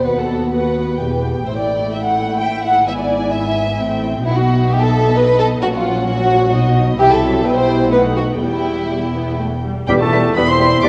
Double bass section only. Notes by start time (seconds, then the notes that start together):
0.06 D#2
1.00 E1
1.46 A1
2.88 G#1
3.79 A1
4.25 B1
5.63 A#1
6.53 B1
6.98 C2
7.44 B1
8.40 E1
9.88 E1
10.35 E1
10.83 E1